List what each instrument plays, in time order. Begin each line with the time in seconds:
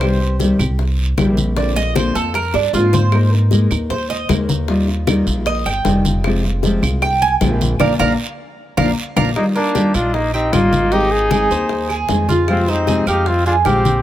Already playing: upright bass C2, cuban tres C5
0.01 nylon-string guitar C3 D#3 G3 C4 G4, high bongo, high conga, long guiro, claves
0.20 nylon-string guitar G3 C4 G4, high conga
0.40 nylon-string guitar C3 D#3 G3 C4 G4, high bongo, high conga, short guiro
0.59 upright bass C2, nylon-string guitar G3 C4 G4, high conga, low conga, short guiro, claves
0.79 muted nylon-string guitar stroke, high bongo, high conga, long guiro
0.98 high conga
1.18 upright bass A#1, nylon-string guitar C3 D#3 G3 C4 G4, high bongo, low bongo, high conga, short guiro, claves
1.37 nylon-string guitar G3 C4 G4, high conga, short guiro
1.57 nylon-string guitar D3 A#3 C4 F4, cuban tres D5, high bongo, high conga, long guiro
1.76 nylon-string guitar A#3 C4 F4, cuban tres D#5, high bongo, high conga
1.95 nylon-string guitar D3 A#3 C4 F4, cuban tres C5, high bongo, high conga, short guiro, claves
2.15 upright bass F2, nylon-string guitar A#3 C4 F4, cuban tres A4, high bongo, short guiro
2.34 cuban tres A#4, muted nylon-string guitar stroke, high bongo, high conga, long guiro
2.54 upright bass G2, cuban tres D4, high bongo, high conga, claves
2.73 upright bass G#2, nylon-string guitar D3 A#3 C4 F4, cuban tres F4, high bongo, high conga, short guiro
2.93 nylon-string guitar A#3 C4 F4, cuban tres C5, low bongo, high conga, short guiro
3.12 nylon-string guitar G#3 A#3 D#4 A#4, high bongo, high conga, long guiro, claves
3.32 nylon-string guitar A#3 D#4 A#4, high conga
3.51 nylon-string guitar G#3 A#3 D#4 A#4, high bongo, high conga, short guiro
3.70 upright bass D#2, nylon-string guitar A#3 D#4 A#4, high conga, low conga, short guiro, claves
3.90 cuban tres C5, muted nylon-string guitar stroke, high bongo, high conga, low conga, long guiro
4.10 cuban tres D#5, high conga
4.29 upright bass D#2, nylon-string guitar G#3 A#3 D#4 A#4, high bongo, low bongo, high conga, short guiro, claves
4.49 nylon-string guitar A#3 D#4 A#4, high conga, short guiro
4.68 nylon-string guitar D#3 G3 D#4 F4, high bongo, high conga, long guiro
4.88 nylon-string guitar G3 D#4 F4, high bongo, high conga
5.07 nylon-string guitar D#3 G3 D#4 F4, high bongo, high conga, short guiro, claves
5.27 upright bass A#1, nylon-string guitar G3 D#4 F4, high bongo, short guiro
5.46 cuban tres D#5, muted nylon-string guitar stroke, high bongo, high conga, long guiro
5.65 upright bass G1, cuban tres G5, high bongo, high conga, claves
5.85 upright bass F1, nylon-string guitar D#3 G3 D#4 F4, high bongo, low bongo, high conga, short guiro
6.05 nylon-string guitar G3 D#4 F4, high conga, short guiro
6.24 nylon-string guitar C3 F3 G#3 C4 F4, high bongo, high conga, long guiro, claves
6.44 nylon-string guitar G#3 C4 F4, high conga
6.63 nylon-string guitar C3 F3 G#3 C4 F4, high bongo, high conga, short guiro
6.82 upright bass C2, nylon-string guitar G#3 C4 F4, high conga, low conga, short guiro, claves
7.02 cuban tres G5, muted nylon-string guitar stroke, high bongo, high conga, long guiro
7.22 cuban tres G#5, high conga
7.41 upright bass A#1, nylon-string guitar C3 F3 G#3 C4 F4, high bongo, low bongo, high conga, short guiro, claves
7.61 nylon-string guitar G#3 C4 F4, high conga, short guiro
7.80 upright bass A#1, nylon-string guitar F3 A#3 D4, cuban tres D5 F5 A#5, low bongo, high conga, long guiro, claves
7.99 upright bass A#1, nylon-string guitar F3 A#3 D4, cuban tres D5 F5 A#5, low bongo, high conga, long guiro, claves
8.77 upright bass A#1, nylon-string guitar F3 A#3 D4, cuban tres D5 F5 A#5, low bongo, high conga, long guiro, claves
9.16 upright bass A#1, nylon-string guitar F3 A#3 D4, cuban tres D5 F5 A#5, low bongo, high conga, long guiro, claves
9.36 nylon-string guitar D#3 G3 D#4 F4, trumpet A#3, muted trumpet D#4, high bongo, high conga, long guiro, claves
9.55 nylon-string guitar G3 F4, trumpet A#3, muted trumpet D4, cuban tres A#4, high conga
9.75 nylon-string guitar D#3 G3 D#4 F4, cuban tres G4, high bongo, high conga, short guiro
9.94 upright bass A#1, nylon-string guitar G3 D#4 F4, trumpet D4, muted trumpet F4, cuban tres D#5, high conga, short guiro, claves
10.14 trumpet A#3, muted trumpet D#4, muted nylon-string guitar stroke, high bongo, high conga, long guiro
10.34 trumpet C4, muted trumpet D#4, cuban tres G4, high conga
10.53 upright bass G#1, nylon-string guitar D#3 G3 D#4 F4, trumpet A#3, muted trumpet F4, cuban tres D#5, high bongo, low bongo, high conga, short guiro, claves
10.72 nylon-string guitar D#4 F4, high conga, short guiro
10.92 nylon-string guitar D#3 G#3 C4 D#4 G#4, cuban tres D#4, trumpet D#4, muted trumpet G4, high bongo, high conga, long guiro
11.11 nylon-string guitar C4 D#4 G#4, trumpet D#4, muted trumpet G#4, high bongo, high conga
11.30 nylon-string guitar D#3 G#3 C4 D#4 G#4, cuban tres G#4, high bongo, high conga, short guiro, claves
11.50 upright bass D#2, nylon-string guitar C4 D#4, cuban tres C5, high bongo, short guiro
11.69 muted nylon-string guitar stroke, high bongo, high conga, long guiro
11.89 cuban tres G#4, high bongo, high conga, claves
12.09 upright bass F2, nylon-string guitar D#3 G#3 C4 D#4 G#4, high bongo, low bongo, high conga, short guiro
12.29 nylon-string guitar C4 D#4 G#4, cuban tres F4, high conga, short guiro
12.48 nylon-string guitar C3 F3 G#3 C4 G4, trumpet C4, muted trumpet F4, high bongo, high conga, long guiro, claves
12.68 nylon-string guitar G#3 C4 G4, trumpet C4, muted trumpet D#4, cuban tres C5, high conga
12.87 nylon-string guitar C3 F3 G#3 C4 G4, cuban tres G#4, high bongo, high conga, short guiro
13.06 upright bass F2, nylon-string guitar G#3 C4 G4, trumpet D#4, muted trumpet G4, cuban tres F5, high conga, short guiro, claves
13.26 trumpet C4, muted trumpet F4, muted nylon-string guitar stroke, high bongo, high conga, long guiro
13.46 trumpet D4, muted trumpet F4, cuban tres G#4, high conga
13.65 upright bass A#1, nylon-string guitar C3 F3 G#3 C4 G4, trumpet C4, muted trumpet G4, cuban tres F5, high bongo, low bongo, high conga, short guiro, claves
13.85 nylon-string guitar G#3 C4 G4, high conga, short guiro